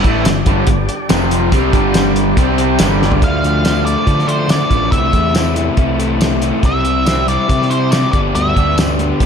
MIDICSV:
0, 0, Header, 1, 6, 480
1, 0, Start_track
1, 0, Tempo, 421941
1, 1734, Time_signature, 4, 2, 24, 8
1, 3660, Tempo, 427655
1, 10441, End_track
2, 0, Start_track
2, 0, Title_t, "Lead electric guitar"
2, 0, Program_c, 0, 29
2, 3687, Note_on_c, 0, 77, 104
2, 4368, Note_off_c, 0, 77, 0
2, 4373, Note_on_c, 0, 74, 87
2, 4847, Note_on_c, 0, 72, 78
2, 4867, Note_off_c, 0, 74, 0
2, 5097, Note_off_c, 0, 72, 0
2, 5101, Note_on_c, 0, 74, 81
2, 5543, Note_off_c, 0, 74, 0
2, 5571, Note_on_c, 0, 76, 80
2, 6018, Note_off_c, 0, 76, 0
2, 7522, Note_on_c, 0, 76, 107
2, 8185, Note_off_c, 0, 76, 0
2, 8224, Note_on_c, 0, 74, 91
2, 8694, Note_on_c, 0, 72, 77
2, 8715, Note_off_c, 0, 74, 0
2, 8929, Note_on_c, 0, 74, 85
2, 8943, Note_off_c, 0, 72, 0
2, 9146, Note_off_c, 0, 74, 0
2, 9159, Note_on_c, 0, 74, 82
2, 9227, Note_off_c, 0, 74, 0
2, 9424, Note_on_c, 0, 76, 91
2, 9868, Note_off_c, 0, 76, 0
2, 10441, End_track
3, 0, Start_track
3, 0, Title_t, "Tonewheel organ"
3, 0, Program_c, 1, 16
3, 0, Note_on_c, 1, 62, 70
3, 0, Note_on_c, 1, 67, 72
3, 0, Note_on_c, 1, 74, 70
3, 1236, Note_off_c, 1, 67, 0
3, 1236, Note_off_c, 1, 74, 0
3, 1243, Note_off_c, 1, 62, 0
3, 1254, Note_on_c, 1, 60, 74
3, 1270, Note_on_c, 1, 65, 67
3, 1272, Note_on_c, 1, 72, 67
3, 1729, Note_off_c, 1, 60, 0
3, 1737, Note_off_c, 1, 65, 0
3, 1738, Note_off_c, 1, 72, 0
3, 1744, Note_on_c, 1, 67, 66
3, 1746, Note_on_c, 1, 74, 70
3, 1747, Note_on_c, 1, 62, 68
3, 2666, Note_off_c, 1, 67, 0
3, 2680, Note_on_c, 1, 67, 73
3, 2689, Note_on_c, 1, 72, 68
3, 2691, Note_off_c, 1, 74, 0
3, 2692, Note_off_c, 1, 62, 0
3, 2692, Note_on_c, 1, 60, 70
3, 3164, Note_off_c, 1, 67, 0
3, 3169, Note_off_c, 1, 72, 0
3, 3170, Note_off_c, 1, 60, 0
3, 3190, Note_on_c, 1, 74, 69
3, 3205, Note_on_c, 1, 62, 67
3, 3209, Note_on_c, 1, 67, 70
3, 3661, Note_off_c, 1, 74, 0
3, 3669, Note_off_c, 1, 62, 0
3, 3671, Note_off_c, 1, 67, 0
3, 10441, End_track
4, 0, Start_track
4, 0, Title_t, "Overdriven electric guitar"
4, 0, Program_c, 2, 29
4, 53, Note_on_c, 2, 45, 94
4, 56, Note_on_c, 2, 52, 102
4, 66, Note_on_c, 2, 57, 102
4, 288, Note_off_c, 2, 45, 0
4, 289, Note_off_c, 2, 52, 0
4, 294, Note_off_c, 2, 57, 0
4, 304, Note_on_c, 2, 43, 64
4, 310, Note_on_c, 2, 50, 70
4, 492, Note_off_c, 2, 43, 0
4, 495, Note_off_c, 2, 50, 0
4, 538, Note_on_c, 2, 43, 98
4, 543, Note_on_c, 2, 50, 104
4, 549, Note_on_c, 2, 55, 99
4, 767, Note_off_c, 2, 43, 0
4, 772, Note_off_c, 2, 50, 0
4, 775, Note_off_c, 2, 55, 0
4, 781, Note_on_c, 2, 43, 59
4, 787, Note_on_c, 2, 50, 75
4, 970, Note_off_c, 2, 43, 0
4, 973, Note_off_c, 2, 50, 0
4, 1247, Note_on_c, 2, 41, 91
4, 1252, Note_on_c, 2, 48, 105
4, 1259, Note_on_c, 2, 53, 116
4, 1721, Note_off_c, 2, 48, 0
4, 1723, Note_off_c, 2, 41, 0
4, 1728, Note_off_c, 2, 53, 0
4, 1735, Note_on_c, 2, 48, 104
4, 1738, Note_on_c, 2, 55, 103
4, 1747, Note_on_c, 2, 60, 108
4, 1967, Note_off_c, 2, 48, 0
4, 1969, Note_off_c, 2, 55, 0
4, 1973, Note_off_c, 2, 60, 0
4, 1975, Note_on_c, 2, 43, 87
4, 1985, Note_on_c, 2, 50, 106
4, 1991, Note_on_c, 2, 55, 97
4, 2688, Note_off_c, 2, 43, 0
4, 2693, Note_off_c, 2, 50, 0
4, 2693, Note_off_c, 2, 55, 0
4, 2699, Note_on_c, 2, 48, 90
4, 2706, Note_on_c, 2, 55, 93
4, 2709, Note_on_c, 2, 60, 100
4, 3172, Note_off_c, 2, 48, 0
4, 3175, Note_off_c, 2, 55, 0
4, 3175, Note_on_c, 2, 43, 98
4, 3176, Note_off_c, 2, 60, 0
4, 3189, Note_on_c, 2, 50, 108
4, 3190, Note_on_c, 2, 55, 106
4, 3649, Note_off_c, 2, 50, 0
4, 3651, Note_off_c, 2, 43, 0
4, 3659, Note_off_c, 2, 55, 0
4, 3663, Note_on_c, 2, 50, 87
4, 3664, Note_on_c, 2, 53, 85
4, 3675, Note_on_c, 2, 57, 91
4, 3683, Note_on_c, 2, 62, 95
4, 3893, Note_off_c, 2, 50, 0
4, 3907, Note_on_c, 2, 50, 77
4, 3909, Note_off_c, 2, 53, 0
4, 3911, Note_off_c, 2, 62, 0
4, 3919, Note_off_c, 2, 57, 0
4, 3923, Note_on_c, 2, 53, 78
4, 3923, Note_on_c, 2, 57, 83
4, 3925, Note_on_c, 2, 62, 83
4, 4121, Note_off_c, 2, 50, 0
4, 4129, Note_off_c, 2, 53, 0
4, 4134, Note_off_c, 2, 62, 0
4, 4134, Note_on_c, 2, 50, 76
4, 4143, Note_on_c, 2, 53, 80
4, 4144, Note_off_c, 2, 57, 0
4, 4148, Note_on_c, 2, 57, 91
4, 4148, Note_on_c, 2, 62, 93
4, 4355, Note_off_c, 2, 50, 0
4, 4362, Note_off_c, 2, 53, 0
4, 4369, Note_on_c, 2, 50, 75
4, 4373, Note_off_c, 2, 62, 0
4, 4374, Note_off_c, 2, 57, 0
4, 4375, Note_on_c, 2, 53, 73
4, 4379, Note_on_c, 2, 57, 83
4, 4387, Note_on_c, 2, 62, 90
4, 4591, Note_off_c, 2, 50, 0
4, 4597, Note_off_c, 2, 57, 0
4, 4598, Note_off_c, 2, 53, 0
4, 4604, Note_on_c, 2, 50, 86
4, 4609, Note_off_c, 2, 62, 0
4, 4611, Note_on_c, 2, 57, 93
4, 4612, Note_on_c, 2, 53, 82
4, 4622, Note_on_c, 2, 62, 92
4, 4819, Note_off_c, 2, 50, 0
4, 4829, Note_off_c, 2, 53, 0
4, 4832, Note_on_c, 2, 50, 79
4, 4835, Note_off_c, 2, 57, 0
4, 4835, Note_off_c, 2, 62, 0
4, 4842, Note_on_c, 2, 53, 74
4, 4849, Note_on_c, 2, 57, 90
4, 4849, Note_on_c, 2, 62, 80
4, 5061, Note_off_c, 2, 53, 0
4, 5063, Note_off_c, 2, 50, 0
4, 5074, Note_off_c, 2, 57, 0
4, 5074, Note_on_c, 2, 53, 88
4, 5075, Note_off_c, 2, 62, 0
4, 5076, Note_on_c, 2, 50, 82
4, 5087, Note_on_c, 2, 57, 93
4, 5088, Note_on_c, 2, 62, 91
4, 5303, Note_off_c, 2, 50, 0
4, 5312, Note_off_c, 2, 53, 0
4, 5315, Note_off_c, 2, 57, 0
4, 5317, Note_on_c, 2, 50, 75
4, 5319, Note_off_c, 2, 62, 0
4, 5325, Note_on_c, 2, 53, 80
4, 5328, Note_on_c, 2, 57, 79
4, 5333, Note_on_c, 2, 62, 85
4, 5550, Note_off_c, 2, 50, 0
4, 5554, Note_off_c, 2, 53, 0
4, 5556, Note_off_c, 2, 57, 0
4, 5558, Note_off_c, 2, 62, 0
4, 5558, Note_on_c, 2, 48, 90
4, 5570, Note_on_c, 2, 52, 89
4, 5572, Note_on_c, 2, 57, 92
4, 5572, Note_on_c, 2, 64, 92
4, 5793, Note_off_c, 2, 57, 0
4, 5796, Note_off_c, 2, 48, 0
4, 5796, Note_off_c, 2, 52, 0
4, 5800, Note_on_c, 2, 48, 72
4, 5800, Note_on_c, 2, 52, 72
4, 5806, Note_off_c, 2, 64, 0
4, 5807, Note_on_c, 2, 57, 85
4, 5811, Note_on_c, 2, 64, 76
4, 6023, Note_off_c, 2, 48, 0
4, 6028, Note_on_c, 2, 48, 88
4, 6032, Note_off_c, 2, 57, 0
4, 6035, Note_off_c, 2, 52, 0
4, 6040, Note_on_c, 2, 52, 88
4, 6045, Note_on_c, 2, 57, 85
4, 6047, Note_off_c, 2, 64, 0
4, 6051, Note_on_c, 2, 64, 89
4, 6264, Note_off_c, 2, 48, 0
4, 6277, Note_off_c, 2, 52, 0
4, 6278, Note_off_c, 2, 57, 0
4, 6278, Note_on_c, 2, 48, 80
4, 6287, Note_off_c, 2, 64, 0
4, 6290, Note_on_c, 2, 52, 77
4, 6292, Note_on_c, 2, 57, 78
4, 6300, Note_on_c, 2, 64, 78
4, 6515, Note_off_c, 2, 48, 0
4, 6518, Note_off_c, 2, 52, 0
4, 6525, Note_off_c, 2, 57, 0
4, 6529, Note_on_c, 2, 48, 91
4, 6530, Note_off_c, 2, 64, 0
4, 6531, Note_on_c, 2, 52, 89
4, 6538, Note_on_c, 2, 57, 99
4, 6543, Note_on_c, 2, 64, 99
4, 6753, Note_off_c, 2, 48, 0
4, 6757, Note_off_c, 2, 52, 0
4, 6761, Note_off_c, 2, 57, 0
4, 6766, Note_on_c, 2, 48, 82
4, 6769, Note_off_c, 2, 64, 0
4, 6770, Note_on_c, 2, 52, 75
4, 6774, Note_on_c, 2, 57, 89
4, 6782, Note_on_c, 2, 64, 82
4, 6993, Note_off_c, 2, 48, 0
4, 7003, Note_off_c, 2, 52, 0
4, 7006, Note_off_c, 2, 57, 0
4, 7006, Note_on_c, 2, 48, 92
4, 7016, Note_off_c, 2, 64, 0
4, 7016, Note_on_c, 2, 52, 87
4, 7019, Note_on_c, 2, 57, 106
4, 7029, Note_on_c, 2, 64, 100
4, 7243, Note_off_c, 2, 48, 0
4, 7246, Note_off_c, 2, 52, 0
4, 7250, Note_off_c, 2, 57, 0
4, 7256, Note_on_c, 2, 48, 78
4, 7259, Note_on_c, 2, 52, 76
4, 7263, Note_off_c, 2, 64, 0
4, 7263, Note_on_c, 2, 57, 86
4, 7277, Note_on_c, 2, 64, 81
4, 7474, Note_off_c, 2, 48, 0
4, 7483, Note_off_c, 2, 52, 0
4, 7485, Note_off_c, 2, 57, 0
4, 7488, Note_on_c, 2, 48, 93
4, 7492, Note_off_c, 2, 64, 0
4, 7499, Note_on_c, 2, 55, 91
4, 7506, Note_on_c, 2, 60, 97
4, 7512, Note_on_c, 2, 64, 96
4, 7719, Note_off_c, 2, 48, 0
4, 7733, Note_on_c, 2, 48, 81
4, 7741, Note_off_c, 2, 55, 0
4, 7741, Note_off_c, 2, 60, 0
4, 7742, Note_off_c, 2, 64, 0
4, 7745, Note_on_c, 2, 55, 73
4, 7755, Note_on_c, 2, 60, 77
4, 7756, Note_on_c, 2, 64, 87
4, 7961, Note_off_c, 2, 48, 0
4, 7969, Note_off_c, 2, 55, 0
4, 7971, Note_off_c, 2, 60, 0
4, 7972, Note_off_c, 2, 64, 0
4, 7973, Note_on_c, 2, 55, 83
4, 7974, Note_on_c, 2, 48, 79
4, 7985, Note_on_c, 2, 60, 93
4, 7986, Note_on_c, 2, 64, 90
4, 8207, Note_off_c, 2, 48, 0
4, 8214, Note_off_c, 2, 60, 0
4, 8221, Note_off_c, 2, 55, 0
4, 8221, Note_on_c, 2, 48, 84
4, 8225, Note_off_c, 2, 64, 0
4, 8225, Note_on_c, 2, 55, 84
4, 8227, Note_on_c, 2, 60, 81
4, 8239, Note_on_c, 2, 64, 77
4, 8433, Note_off_c, 2, 48, 0
4, 8441, Note_off_c, 2, 55, 0
4, 8446, Note_on_c, 2, 48, 89
4, 8449, Note_off_c, 2, 60, 0
4, 8452, Note_off_c, 2, 64, 0
4, 8454, Note_on_c, 2, 55, 95
4, 8463, Note_on_c, 2, 60, 95
4, 8466, Note_on_c, 2, 64, 99
4, 8683, Note_off_c, 2, 48, 0
4, 8694, Note_off_c, 2, 60, 0
4, 8696, Note_off_c, 2, 55, 0
4, 8696, Note_on_c, 2, 48, 73
4, 8702, Note_off_c, 2, 64, 0
4, 8707, Note_on_c, 2, 60, 78
4, 8710, Note_on_c, 2, 55, 76
4, 8715, Note_on_c, 2, 64, 86
4, 8920, Note_off_c, 2, 48, 0
4, 8922, Note_off_c, 2, 55, 0
4, 8932, Note_off_c, 2, 60, 0
4, 8934, Note_off_c, 2, 64, 0
4, 8934, Note_on_c, 2, 48, 89
4, 8935, Note_on_c, 2, 55, 100
4, 8945, Note_on_c, 2, 60, 90
4, 8948, Note_on_c, 2, 64, 97
4, 9162, Note_off_c, 2, 48, 0
4, 9162, Note_off_c, 2, 55, 0
4, 9167, Note_off_c, 2, 60, 0
4, 9168, Note_off_c, 2, 64, 0
4, 9172, Note_on_c, 2, 43, 94
4, 9180, Note_on_c, 2, 55, 90
4, 9182, Note_on_c, 2, 50, 83
4, 9190, Note_on_c, 2, 59, 94
4, 9192, Note_on_c, 2, 62, 105
4, 9399, Note_off_c, 2, 43, 0
4, 9409, Note_off_c, 2, 50, 0
4, 9411, Note_off_c, 2, 55, 0
4, 9413, Note_on_c, 2, 43, 93
4, 9414, Note_off_c, 2, 59, 0
4, 9423, Note_on_c, 2, 50, 84
4, 9425, Note_on_c, 2, 55, 97
4, 9428, Note_on_c, 2, 59, 98
4, 9432, Note_off_c, 2, 62, 0
4, 9436, Note_on_c, 2, 62, 100
4, 9632, Note_off_c, 2, 43, 0
4, 9640, Note_off_c, 2, 50, 0
4, 9645, Note_off_c, 2, 55, 0
4, 9646, Note_on_c, 2, 43, 75
4, 9649, Note_off_c, 2, 59, 0
4, 9654, Note_on_c, 2, 50, 74
4, 9659, Note_on_c, 2, 55, 80
4, 9662, Note_on_c, 2, 59, 74
4, 9667, Note_off_c, 2, 62, 0
4, 9672, Note_on_c, 2, 62, 83
4, 9887, Note_off_c, 2, 43, 0
4, 9894, Note_off_c, 2, 50, 0
4, 9897, Note_off_c, 2, 55, 0
4, 9901, Note_on_c, 2, 43, 86
4, 9903, Note_off_c, 2, 59, 0
4, 9908, Note_on_c, 2, 50, 88
4, 9910, Note_on_c, 2, 55, 83
4, 9916, Note_on_c, 2, 59, 92
4, 9919, Note_off_c, 2, 62, 0
4, 9923, Note_on_c, 2, 62, 92
4, 10134, Note_off_c, 2, 43, 0
4, 10138, Note_off_c, 2, 50, 0
4, 10148, Note_on_c, 2, 43, 73
4, 10149, Note_off_c, 2, 55, 0
4, 10151, Note_off_c, 2, 59, 0
4, 10151, Note_on_c, 2, 50, 79
4, 10163, Note_on_c, 2, 55, 88
4, 10164, Note_on_c, 2, 59, 82
4, 10166, Note_off_c, 2, 62, 0
4, 10170, Note_on_c, 2, 62, 76
4, 10362, Note_off_c, 2, 43, 0
4, 10376, Note_off_c, 2, 50, 0
4, 10376, Note_on_c, 2, 43, 84
4, 10379, Note_off_c, 2, 55, 0
4, 10389, Note_off_c, 2, 59, 0
4, 10390, Note_on_c, 2, 50, 88
4, 10391, Note_off_c, 2, 62, 0
4, 10393, Note_on_c, 2, 55, 85
4, 10402, Note_on_c, 2, 59, 97
4, 10405, Note_on_c, 2, 62, 95
4, 10441, Note_off_c, 2, 43, 0
4, 10441, Note_off_c, 2, 50, 0
4, 10441, Note_off_c, 2, 55, 0
4, 10441, Note_off_c, 2, 59, 0
4, 10441, Note_off_c, 2, 62, 0
4, 10441, End_track
5, 0, Start_track
5, 0, Title_t, "Fingered electric bass"
5, 0, Program_c, 3, 33
5, 45, Note_on_c, 3, 33, 98
5, 274, Note_off_c, 3, 33, 0
5, 293, Note_on_c, 3, 31, 81
5, 518, Note_off_c, 3, 31, 0
5, 527, Note_on_c, 3, 31, 100
5, 754, Note_off_c, 3, 31, 0
5, 772, Note_on_c, 3, 31, 74
5, 996, Note_off_c, 3, 31, 0
5, 1259, Note_on_c, 3, 29, 101
5, 1702, Note_off_c, 3, 29, 0
5, 1735, Note_on_c, 3, 36, 94
5, 1958, Note_off_c, 3, 36, 0
5, 1972, Note_on_c, 3, 31, 90
5, 2648, Note_off_c, 3, 31, 0
5, 2697, Note_on_c, 3, 36, 88
5, 3144, Note_off_c, 3, 36, 0
5, 3182, Note_on_c, 3, 31, 94
5, 3629, Note_off_c, 3, 31, 0
5, 3664, Note_on_c, 3, 38, 87
5, 4478, Note_off_c, 3, 38, 0
5, 4618, Note_on_c, 3, 50, 88
5, 5230, Note_off_c, 3, 50, 0
5, 5331, Note_on_c, 3, 33, 82
5, 5537, Note_off_c, 3, 33, 0
5, 5579, Note_on_c, 3, 36, 89
5, 5782, Note_off_c, 3, 36, 0
5, 5810, Note_on_c, 3, 40, 79
5, 6426, Note_off_c, 3, 40, 0
5, 6528, Note_on_c, 3, 36, 82
5, 7352, Note_off_c, 3, 36, 0
5, 7490, Note_on_c, 3, 36, 89
5, 8314, Note_off_c, 3, 36, 0
5, 8464, Note_on_c, 3, 48, 92
5, 9077, Note_off_c, 3, 48, 0
5, 9180, Note_on_c, 3, 31, 82
5, 9384, Note_off_c, 3, 31, 0
5, 9420, Note_on_c, 3, 38, 88
5, 9625, Note_off_c, 3, 38, 0
5, 9669, Note_on_c, 3, 38, 82
5, 10280, Note_off_c, 3, 38, 0
5, 10385, Note_on_c, 3, 31, 83
5, 10441, Note_off_c, 3, 31, 0
5, 10441, End_track
6, 0, Start_track
6, 0, Title_t, "Drums"
6, 49, Note_on_c, 9, 42, 75
6, 51, Note_on_c, 9, 36, 104
6, 163, Note_off_c, 9, 42, 0
6, 165, Note_off_c, 9, 36, 0
6, 286, Note_on_c, 9, 42, 102
6, 286, Note_on_c, 9, 54, 107
6, 298, Note_on_c, 9, 38, 109
6, 400, Note_off_c, 9, 42, 0
6, 400, Note_off_c, 9, 54, 0
6, 412, Note_off_c, 9, 38, 0
6, 523, Note_on_c, 9, 42, 81
6, 529, Note_on_c, 9, 36, 101
6, 637, Note_off_c, 9, 42, 0
6, 642, Note_off_c, 9, 36, 0
6, 758, Note_on_c, 9, 42, 96
6, 767, Note_on_c, 9, 36, 88
6, 872, Note_off_c, 9, 42, 0
6, 881, Note_off_c, 9, 36, 0
6, 1008, Note_on_c, 9, 42, 73
6, 1122, Note_off_c, 9, 42, 0
6, 1244, Note_on_c, 9, 42, 94
6, 1244, Note_on_c, 9, 54, 115
6, 1256, Note_on_c, 9, 38, 115
6, 1357, Note_off_c, 9, 42, 0
6, 1357, Note_off_c, 9, 54, 0
6, 1370, Note_off_c, 9, 38, 0
6, 1494, Note_on_c, 9, 42, 70
6, 1607, Note_off_c, 9, 42, 0
6, 1730, Note_on_c, 9, 42, 90
6, 1732, Note_on_c, 9, 36, 107
6, 1844, Note_off_c, 9, 42, 0
6, 1846, Note_off_c, 9, 36, 0
6, 1970, Note_on_c, 9, 42, 73
6, 1972, Note_on_c, 9, 36, 102
6, 2084, Note_off_c, 9, 42, 0
6, 2086, Note_off_c, 9, 36, 0
6, 2209, Note_on_c, 9, 42, 89
6, 2209, Note_on_c, 9, 54, 112
6, 2222, Note_on_c, 9, 38, 105
6, 2323, Note_off_c, 9, 42, 0
6, 2323, Note_off_c, 9, 54, 0
6, 2336, Note_off_c, 9, 38, 0
6, 2457, Note_on_c, 9, 42, 72
6, 2571, Note_off_c, 9, 42, 0
6, 2696, Note_on_c, 9, 36, 101
6, 2696, Note_on_c, 9, 42, 96
6, 2810, Note_off_c, 9, 36, 0
6, 2810, Note_off_c, 9, 42, 0
6, 2937, Note_on_c, 9, 42, 74
6, 3051, Note_off_c, 9, 42, 0
6, 3171, Note_on_c, 9, 42, 107
6, 3171, Note_on_c, 9, 54, 109
6, 3183, Note_on_c, 9, 38, 111
6, 3284, Note_off_c, 9, 42, 0
6, 3284, Note_off_c, 9, 54, 0
6, 3297, Note_off_c, 9, 38, 0
6, 3437, Note_on_c, 9, 38, 62
6, 3545, Note_on_c, 9, 43, 90
6, 3551, Note_off_c, 9, 38, 0
6, 3659, Note_off_c, 9, 43, 0
6, 3664, Note_on_c, 9, 36, 98
6, 3664, Note_on_c, 9, 42, 79
6, 3776, Note_off_c, 9, 36, 0
6, 3776, Note_off_c, 9, 42, 0
6, 3914, Note_on_c, 9, 42, 62
6, 4026, Note_off_c, 9, 42, 0
6, 4143, Note_on_c, 9, 42, 75
6, 4143, Note_on_c, 9, 54, 91
6, 4156, Note_on_c, 9, 38, 100
6, 4255, Note_off_c, 9, 42, 0
6, 4255, Note_off_c, 9, 54, 0
6, 4268, Note_off_c, 9, 38, 0
6, 4389, Note_on_c, 9, 42, 60
6, 4501, Note_off_c, 9, 42, 0
6, 4617, Note_on_c, 9, 36, 81
6, 4619, Note_on_c, 9, 42, 71
6, 4729, Note_off_c, 9, 36, 0
6, 4732, Note_off_c, 9, 42, 0
6, 4752, Note_on_c, 9, 38, 28
6, 4860, Note_on_c, 9, 42, 55
6, 4864, Note_off_c, 9, 38, 0
6, 4972, Note_off_c, 9, 42, 0
6, 5091, Note_on_c, 9, 42, 72
6, 5091, Note_on_c, 9, 54, 94
6, 5104, Note_on_c, 9, 38, 104
6, 5203, Note_off_c, 9, 42, 0
6, 5203, Note_off_c, 9, 54, 0
6, 5216, Note_off_c, 9, 38, 0
6, 5331, Note_on_c, 9, 42, 53
6, 5332, Note_on_c, 9, 36, 70
6, 5444, Note_off_c, 9, 36, 0
6, 5444, Note_off_c, 9, 42, 0
6, 5572, Note_on_c, 9, 36, 101
6, 5578, Note_on_c, 9, 42, 71
6, 5684, Note_off_c, 9, 36, 0
6, 5690, Note_off_c, 9, 42, 0
6, 5808, Note_on_c, 9, 42, 54
6, 5810, Note_on_c, 9, 36, 71
6, 5920, Note_off_c, 9, 42, 0
6, 5922, Note_off_c, 9, 36, 0
6, 6049, Note_on_c, 9, 42, 69
6, 6049, Note_on_c, 9, 54, 97
6, 6062, Note_on_c, 9, 38, 99
6, 6162, Note_off_c, 9, 42, 0
6, 6162, Note_off_c, 9, 54, 0
6, 6174, Note_off_c, 9, 38, 0
6, 6289, Note_on_c, 9, 42, 56
6, 6401, Note_off_c, 9, 42, 0
6, 6526, Note_on_c, 9, 42, 74
6, 6530, Note_on_c, 9, 36, 79
6, 6639, Note_off_c, 9, 42, 0
6, 6642, Note_off_c, 9, 36, 0
6, 6778, Note_on_c, 9, 42, 62
6, 6890, Note_off_c, 9, 42, 0
6, 7016, Note_on_c, 9, 42, 79
6, 7016, Note_on_c, 9, 54, 101
6, 7028, Note_on_c, 9, 38, 106
6, 7128, Note_off_c, 9, 42, 0
6, 7128, Note_off_c, 9, 54, 0
6, 7140, Note_off_c, 9, 38, 0
6, 7251, Note_on_c, 9, 42, 61
6, 7363, Note_off_c, 9, 42, 0
6, 7492, Note_on_c, 9, 36, 97
6, 7492, Note_on_c, 9, 42, 81
6, 7604, Note_off_c, 9, 36, 0
6, 7604, Note_off_c, 9, 42, 0
6, 7733, Note_on_c, 9, 42, 58
6, 7846, Note_off_c, 9, 42, 0
6, 7978, Note_on_c, 9, 42, 77
6, 7978, Note_on_c, 9, 54, 99
6, 7990, Note_on_c, 9, 38, 106
6, 8090, Note_off_c, 9, 42, 0
6, 8090, Note_off_c, 9, 54, 0
6, 8103, Note_off_c, 9, 38, 0
6, 8220, Note_on_c, 9, 42, 61
6, 8333, Note_off_c, 9, 42, 0
6, 8460, Note_on_c, 9, 36, 77
6, 8462, Note_on_c, 9, 42, 79
6, 8573, Note_off_c, 9, 36, 0
6, 8574, Note_off_c, 9, 42, 0
6, 8601, Note_on_c, 9, 38, 28
6, 8700, Note_on_c, 9, 42, 61
6, 8713, Note_off_c, 9, 38, 0
6, 8812, Note_off_c, 9, 42, 0
6, 8937, Note_on_c, 9, 42, 79
6, 8937, Note_on_c, 9, 54, 96
6, 8950, Note_on_c, 9, 38, 99
6, 9050, Note_off_c, 9, 42, 0
6, 9050, Note_off_c, 9, 54, 0
6, 9062, Note_off_c, 9, 38, 0
6, 9176, Note_on_c, 9, 42, 57
6, 9180, Note_on_c, 9, 36, 97
6, 9289, Note_off_c, 9, 42, 0
6, 9292, Note_off_c, 9, 36, 0
6, 9424, Note_on_c, 9, 42, 74
6, 9536, Note_off_c, 9, 42, 0
6, 9662, Note_on_c, 9, 36, 72
6, 9665, Note_on_c, 9, 42, 54
6, 9775, Note_off_c, 9, 36, 0
6, 9777, Note_off_c, 9, 42, 0
6, 9901, Note_on_c, 9, 42, 72
6, 9901, Note_on_c, 9, 54, 96
6, 9913, Note_on_c, 9, 38, 104
6, 10013, Note_off_c, 9, 42, 0
6, 10013, Note_off_c, 9, 54, 0
6, 10025, Note_off_c, 9, 38, 0
6, 10141, Note_on_c, 9, 42, 54
6, 10254, Note_off_c, 9, 42, 0
6, 10379, Note_on_c, 9, 42, 75
6, 10380, Note_on_c, 9, 36, 79
6, 10441, Note_off_c, 9, 36, 0
6, 10441, Note_off_c, 9, 42, 0
6, 10441, End_track
0, 0, End_of_file